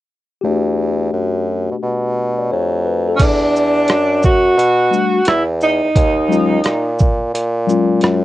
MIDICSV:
0, 0, Header, 1, 5, 480
1, 0, Start_track
1, 0, Tempo, 689655
1, 306, Time_signature, 4, 2, 24, 8
1, 5739, End_track
2, 0, Start_track
2, 0, Title_t, "Tenor saxophone"
2, 0, Program_c, 0, 66
2, 2198, Note_on_c, 0, 61, 64
2, 2244, Note_on_c, 0, 62, 89
2, 2255, Note_off_c, 0, 61, 0
2, 2952, Note_off_c, 0, 62, 0
2, 2956, Note_on_c, 0, 66, 97
2, 3643, Note_off_c, 0, 66, 0
2, 3675, Note_on_c, 0, 64, 82
2, 3781, Note_off_c, 0, 64, 0
2, 3919, Note_on_c, 0, 63, 80
2, 4845, Note_off_c, 0, 63, 0
2, 5739, End_track
3, 0, Start_track
3, 0, Title_t, "Tine electric piano"
3, 0, Program_c, 1, 4
3, 286, Note_on_c, 1, 67, 64
3, 300, Note_on_c, 1, 57, 59
3, 316, Note_on_c, 1, 62, 54
3, 332, Note_on_c, 1, 66, 69
3, 1661, Note_on_c, 1, 74, 52
3, 1743, Note_off_c, 1, 74, 0
3, 1752, Note_on_c, 1, 73, 58
3, 1977, Note_off_c, 1, 73, 0
3, 1990, Note_on_c, 1, 71, 58
3, 2134, Note_off_c, 1, 71, 0
3, 2150, Note_on_c, 1, 69, 64
3, 2188, Note_off_c, 1, 67, 0
3, 2195, Note_off_c, 1, 57, 0
3, 2203, Note_off_c, 1, 62, 0
3, 2211, Note_off_c, 1, 66, 0
3, 2373, Note_off_c, 1, 69, 0
3, 3415, Note_on_c, 1, 55, 55
3, 3421, Note_on_c, 1, 57, 51
3, 3432, Note_on_c, 1, 62, 49
3, 3438, Note_on_c, 1, 66, 62
3, 3609, Note_off_c, 1, 55, 0
3, 3612, Note_off_c, 1, 57, 0
3, 3617, Note_off_c, 1, 62, 0
3, 3620, Note_off_c, 1, 66, 0
3, 4375, Note_on_c, 1, 54, 67
3, 4382, Note_on_c, 1, 56, 59
3, 4390, Note_on_c, 1, 61, 64
3, 4397, Note_on_c, 1, 65, 75
3, 4569, Note_off_c, 1, 54, 0
3, 4572, Note_off_c, 1, 56, 0
3, 4576, Note_off_c, 1, 61, 0
3, 4580, Note_off_c, 1, 65, 0
3, 5338, Note_on_c, 1, 54, 72
3, 5344, Note_on_c, 1, 56, 64
3, 5351, Note_on_c, 1, 61, 64
3, 5359, Note_on_c, 1, 65, 86
3, 5705, Note_off_c, 1, 54, 0
3, 5708, Note_off_c, 1, 56, 0
3, 5712, Note_off_c, 1, 61, 0
3, 5715, Note_off_c, 1, 65, 0
3, 5739, End_track
4, 0, Start_track
4, 0, Title_t, "Bassoon"
4, 0, Program_c, 2, 70
4, 306, Note_on_c, 2, 40, 83
4, 762, Note_off_c, 2, 40, 0
4, 785, Note_on_c, 2, 42, 80
4, 1160, Note_off_c, 2, 42, 0
4, 1191, Note_on_c, 2, 47, 43
4, 1223, Note_off_c, 2, 47, 0
4, 1270, Note_on_c, 2, 47, 89
4, 1725, Note_off_c, 2, 47, 0
4, 1753, Note_on_c, 2, 41, 88
4, 2206, Note_off_c, 2, 41, 0
4, 2226, Note_on_c, 2, 40, 82
4, 2682, Note_off_c, 2, 40, 0
4, 2705, Note_on_c, 2, 42, 87
4, 3162, Note_off_c, 2, 42, 0
4, 3184, Note_on_c, 2, 47, 98
4, 3476, Note_off_c, 2, 47, 0
4, 3670, Note_on_c, 2, 40, 84
4, 4042, Note_off_c, 2, 40, 0
4, 4061, Note_on_c, 2, 40, 44
4, 4096, Note_off_c, 2, 40, 0
4, 4148, Note_on_c, 2, 39, 100
4, 4603, Note_off_c, 2, 39, 0
4, 4621, Note_on_c, 2, 46, 88
4, 5079, Note_off_c, 2, 46, 0
4, 5108, Note_on_c, 2, 46, 98
4, 5563, Note_off_c, 2, 46, 0
4, 5586, Note_on_c, 2, 42, 103
4, 5739, Note_off_c, 2, 42, 0
4, 5739, End_track
5, 0, Start_track
5, 0, Title_t, "Drums"
5, 2222, Note_on_c, 9, 49, 86
5, 2223, Note_on_c, 9, 36, 103
5, 2224, Note_on_c, 9, 42, 92
5, 2292, Note_off_c, 9, 49, 0
5, 2293, Note_off_c, 9, 36, 0
5, 2294, Note_off_c, 9, 42, 0
5, 2477, Note_on_c, 9, 82, 46
5, 2547, Note_off_c, 9, 82, 0
5, 2700, Note_on_c, 9, 42, 61
5, 2713, Note_on_c, 9, 37, 100
5, 2769, Note_off_c, 9, 42, 0
5, 2782, Note_off_c, 9, 37, 0
5, 2943, Note_on_c, 9, 82, 49
5, 2953, Note_on_c, 9, 36, 91
5, 3013, Note_off_c, 9, 82, 0
5, 3023, Note_off_c, 9, 36, 0
5, 3195, Note_on_c, 9, 42, 78
5, 3265, Note_off_c, 9, 42, 0
5, 3433, Note_on_c, 9, 82, 45
5, 3502, Note_off_c, 9, 82, 0
5, 3655, Note_on_c, 9, 42, 70
5, 3674, Note_on_c, 9, 37, 106
5, 3724, Note_off_c, 9, 42, 0
5, 3744, Note_off_c, 9, 37, 0
5, 3904, Note_on_c, 9, 82, 43
5, 3973, Note_off_c, 9, 82, 0
5, 4145, Note_on_c, 9, 36, 105
5, 4147, Note_on_c, 9, 42, 85
5, 4215, Note_off_c, 9, 36, 0
5, 4217, Note_off_c, 9, 42, 0
5, 4400, Note_on_c, 9, 82, 45
5, 4469, Note_off_c, 9, 82, 0
5, 4620, Note_on_c, 9, 42, 65
5, 4634, Note_on_c, 9, 37, 89
5, 4690, Note_off_c, 9, 42, 0
5, 4703, Note_off_c, 9, 37, 0
5, 4864, Note_on_c, 9, 82, 47
5, 4874, Note_on_c, 9, 36, 97
5, 4933, Note_off_c, 9, 82, 0
5, 4944, Note_off_c, 9, 36, 0
5, 5116, Note_on_c, 9, 42, 83
5, 5185, Note_off_c, 9, 42, 0
5, 5353, Note_on_c, 9, 82, 44
5, 5423, Note_off_c, 9, 82, 0
5, 5575, Note_on_c, 9, 42, 71
5, 5595, Note_on_c, 9, 37, 102
5, 5645, Note_off_c, 9, 42, 0
5, 5664, Note_off_c, 9, 37, 0
5, 5739, End_track
0, 0, End_of_file